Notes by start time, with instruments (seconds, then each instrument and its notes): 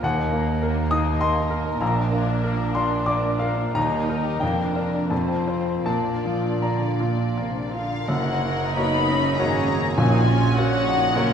0.02 cello section D#2, grand piano D#2 F#5, double bass section D#2, violin section A#3 A#4, french horn section A#3 D#4, viola section A#3
0.17 violin section D#4
0.32 violin section A#3, grand piano A#3
0.47 violin section D#4
0.62 violin section A#3, grand piano A#4
0.76 violin section D#4
0.91 violin section A#3, grand piano D#4 D#6
1.07 violin section D#4
1.20 violin section A#3, grand piano D#5 C6
1.37 violin section D#4
1.51 violin section A#3, grand piano A#4
1.66 violin section D#4
1.81 double bass section A#1, grand piano A#1 A#5, cello section A#2, violin section A#3, viola section D4, french horn section D4
1.97 violin section D4
2.11 grand piano A#3, violin section F4
2.30 violin section D4
2.44 violin section A#3, grand piano A#4
2.59 violin section D4
2.75 grand piano D4 C6, violin section F4
2.90 violin section D4
3.06 violin section A#3, grand piano D5 D6
3.23 violin section D4
3.39 violin section F4, grand piano A#4 F5
3.58 violin section D4
3.74 cello section D#2, double bass section D#2, grand piano D#2 A#5, violin section G3 A#4, french horn section G3 D#4, viola section D#4
3.92 violin section A#3
4.08 violin section D#4, grand piano D#4 A#4
4.25 violin section G4
4.40 double bass section F1, cello section F2, grand piano F2 G5, violin section A#3, french horn section A#3 D4, viola section D4
4.57 violin section D4
4.75 grand piano D4 A#4, violin section F4
4.92 violin section D4
5.09 grand piano F2 A5, violin section A3 C5, french horn section C4 F4, viola section C4
5.28 violin section C4
5.47 violin section F4, grand piano F4 C5
5.65 violin section C4
5.85 double bass section A#1, cello section A#2, grand piano A#2 A5, violin section A#3 D5, viola section A#3, french horn section D4
6.05 violin section D4
6.24 grand piano F3, violin section F4
6.42 violin section D4
6.62 cello section D3, violin section A#3, grand piano D5 A#5
6.81 violin section D4
7.00 cello section A#2, grand piano F4, violin section F4
7.19 violin section D4
7.37 cello section C3, violin section A#3, grand piano F5
7.55 violin section D4
7.72 cello section D3, violin section F4 F5, grand piano F4
7.91 violin section D4
8.07 grand piano F#1 F#2, double bass section F#1, tuba F#1, viola section A#3 D#4, violin section A#4 C#5 F#5
8.76 grand piano A#3 F#4 C#5, viola section B3, cello section D#4, violin section D#5 B5
9.10 viola section C#4
9.38 tuba G#1, double bass section G#1, grand piano A#3 F#4 C#5, cello section C#4, viola section C#4, violin section G#4 C#5 A#5
9.69 viola section A#3
9.97 grand piano A#1 A#2, tuba A#1, double bass section A#1, timpani A#2, viola section A#3 C#4, cello section D#4, violin section F#4 C#5 G#5
10.27 viola section C#4, cello section F4
10.56 grand piano A#3 F#4 C#5, violin section F#4 F#5, cello section F#4, viola section F#4
10.86 cello section D#4
11.15 tuba F#1, double bass section F#1, grand piano A#3 F#4 C#5, viola section C#4 F#4, cello section F4, violin section A#4